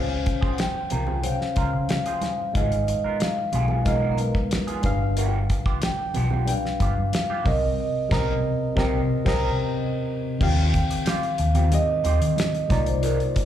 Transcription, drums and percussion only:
0.26 kick medium
0.26 closed hi-hat medium
0.26 muted conga soft
0.43 kick medium
0.58 snare loud
0.58 closed hi-hat medium
0.58 high conga medium
0.90 closed hi-hat medium
0.90 low conga medium
1.07 low conga medium
1.24 closed hi-hat medium
1.24 muted conga soft
1.41 snare soft
1.56 kick medium
1.56 closed hi-hat medium
1.56 muted conga soft
1.88 snare loud
1.88 closed hi-hat medium
1.88 high conga medium
2.06 closed hi-hat medium
2.21 snare soft
2.21 closed hi-hat medium
2.21 high conga medium
2.55 kick loud
2.55 closed hi-hat medium
2.72 closed hi-hat soft
2.87 closed hi-hat medium
2.87 muted conga soft
3.20 snare loud
3.20 closed hi-hat medium
3.20 high conga medium
3.52 closed hi-hat medium
3.52 low conga medium
3.68 low conga medium
3.85 kick medium
3.85 closed hi-hat medium
3.85 muted conga medium
4.18 closed hi-hat medium
4.18 muted conga medium
4.35 kick medium
4.51 snare loud
4.51 closed hi-hat medium
4.51 high conga medium
4.68 closed hi-hat medium
4.83 kick loud
4.83 closed hi-hat medium
4.83 high conga medium
5.17 closed hi-hat medium
5.50 kick medium
5.50 closed hi-hat medium
5.66 kick medium
5.82 snare loud
5.82 closed hi-hat medium
5.82 high conga medium
6.14 closed hi-hat medium
6.14 low conga medium
6.30 low conga medium
6.48 closed hi-hat medium
6.48 muted conga medium
6.66 snare soft
6.80 kick medium
6.80 closed hi-hat medium
6.80 muted conga medium
7.13 snare loud
7.13 closed hi-hat medium
7.13 high conga medium
7.46 kick loud
7.46 open hi-hat soft
7.46 high conga medium
8.11 kick loud
8.11 snare loud
8.11 crash medium
8.77 kick loud
8.77 snare loud
9.26 kick loud
9.26 snare loud
9.26 crash medium
10.41 kick loud
10.41 crash loud
10.58 closed hi-hat soft
10.73 kick medium
10.73 closed hi-hat medium
10.73 muted conga soft
10.91 closed hi-hat medium
11.06 snare loud
11.06 closed hi-hat medium
11.06 high conga medium
11.23 closed hi-hat soft
11.38 closed hi-hat medium
11.55 closed hi-hat medium
11.55 low conga medium
11.72 closed hi-hat medium
11.72 muted conga medium
12.04 closed hi-hat medium
12.04 muted conga medium
12.22 closed hi-hat medium
12.36 snare loud
12.36 closed hi-hat medium
12.36 high conga medium
12.55 closed hi-hat soft
12.70 kick loud
12.70 snare soft
12.70 closed hi-hat medium
12.70 high conga medium
12.86 closed hi-hat soft
13.03 closed hi-hat medium
13.20 closed hi-hat soft
13.35 kick medium
13.35 closed hi-hat medium
13.35 muted conga soft

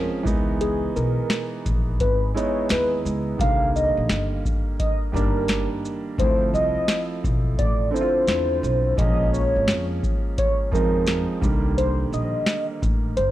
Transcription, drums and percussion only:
0.25 kick medium
0.25 shaker soft
0.61 closed hi-hat medium
0.97 shaker medium
1.30 finger snap medium
1.30 snare loud
1.30 closed hi-hat medium
1.66 kick loud
1.66 closed hi-hat soft
1.66 shaker soft
2.00 kick medium
2.00 closed hi-hat medium
2.37 closed hi-hat medium
2.37 shaker soft
2.69 finger snap medium
2.69 snare loud
2.69 closed hi-hat medium
3.06 shaker medium
3.39 kick loud
3.39 closed hi-hat medium
3.76 shaker medium
4.09 finger snap medium
4.09 snare loud
4.09 closed hi-hat medium
4.45 kick medium
4.45 shaker soft
4.80 kick medium
4.80 closed hi-hat medium
5.14 kick medium
5.14 shaker soft
5.48 finger snap medium
5.48 snare loud
5.48 closed hi-hat medium
5.85 shaker medium
6.18 kick loud
6.18 closed hi-hat medium
6.55 shaker medium
6.88 finger snap medium
6.88 snare loud
6.88 closed hi-hat medium
7.24 kick medium
7.24 shaker soft
7.59 kick medium
7.59 closed hi-hat medium
7.96 shaker medium
8.27 finger snap medium
8.27 snare loud
8.27 closed hi-hat medium
8.64 shaker soft
8.98 kick loud
8.98 closed hi-hat medium
9.34 shaker soft
9.68 finger snap medium
9.68 snare loud
9.68 closed hi-hat medium
10.03 kick medium
10.03 shaker soft
10.38 kick medium
10.38 closed hi-hat medium
10.72 kick medium
10.72 shaker soft
11.07 finger snap medium
11.07 snare loud
11.07 closed hi-hat medium
11.42 kick loud
11.42 shaker medium
11.78 closed hi-hat medium
12.13 shaker medium
12.46 finger snap medium
12.46 snare loud
12.46 closed hi-hat medium
12.82 kick loud
12.82 closed hi-hat soft
12.82 shaker soft
13.17 closed hi-hat medium

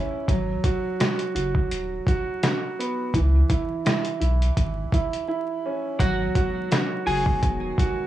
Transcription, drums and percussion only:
0.28 kick loud
0.28 closed hi-hat loud
0.64 kick medium
0.64 closed hi-hat medium
1.00 cross-stick medium
1.00 snare loud
1.00 closed hi-hat loud
1.19 closed hi-hat medium
1.36 closed hi-hat medium
1.55 kick medium
1.71 closed hi-hat medium
2.07 kick loud
2.07 closed hi-hat medium
2.43 cross-stick medium
2.43 snare loud
2.43 closed hi-hat loud
2.80 closed hi-hat medium
3.14 kick loud
3.14 closed hi-hat medium
3.50 kick medium
3.50 closed hi-hat medium
3.86 cross-stick medium
3.86 snare loud
3.86 closed hi-hat loud
4.05 closed hi-hat medium
4.22 closed hi-hat medium
4.42 closed hi-hat medium
4.57 kick medium
4.57 closed hi-hat medium
4.92 kick loud
4.92 closed hi-hat medium
5.13 closed hi-hat medium
6.00 kick loud
6.00 closed hi-hat medium
6.35 kick medium
6.35 closed hi-hat medium
6.72 cross-stick medium
6.72 snare loud
6.72 closed hi-hat loud
7.07 open hi-hat medium
7.26 kick loud
7.43 kick medium
7.43 closed hi-hat medium
7.78 kick loud
7.78 closed hi-hat medium

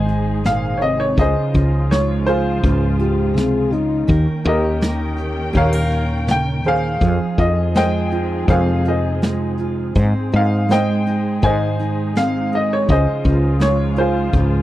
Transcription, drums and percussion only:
0.08 closed hi-hat soft
0.44 snare medium
0.44 closed hi-hat medium
0.81 closed hi-hat soft
1.17 kick medium
1.17 closed hi-hat medium
1.54 kick medium
1.54 closed hi-hat medium
1.91 snare medium
1.91 closed hi-hat medium
2.27 closed hi-hat medium
2.64 kick medium
2.64 closed hi-hat medium
3.00 closed hi-hat medium
3.36 snare medium
3.36 closed hi-hat medium
3.72 closed hi-hat soft
4.08 kick medium
4.08 closed hi-hat medium
4.44 closed hi-hat medium
4.81 snare medium
4.81 closed hi-hat medium
5.18 closed hi-hat medium
5.54 kick medium
5.54 closed hi-hat medium
5.91 closed hi-hat medium
6.27 snare medium
6.27 closed hi-hat medium
6.64 closed hi-hat soft
7.01 kick medium
7.01 closed hi-hat medium
7.38 kick medium
7.38 closed hi-hat soft
7.74 snare medium
7.74 closed hi-hat medium
8.11 closed hi-hat soft
8.48 kick medium
8.48 closed hi-hat medium
8.85 closed hi-hat medium
9.22 snare medium
9.22 closed hi-hat medium
9.58 closed hi-hat soft
9.95 kick medium
9.95 closed hi-hat medium
10.32 closed hi-hat medium
10.70 snare medium
10.70 closed hi-hat medium
11.07 closed hi-hat soft
11.42 kick medium
11.42 closed hi-hat medium
11.80 closed hi-hat medium
12.15 snare medium
12.15 closed hi-hat medium
12.52 closed hi-hat soft
12.88 kick medium
12.88 closed hi-hat medium
13.24 kick medium
13.24 closed hi-hat soft
13.60 snare medium
13.60 closed hi-hat medium
13.96 closed hi-hat soft
14.33 kick medium
14.33 closed hi-hat medium

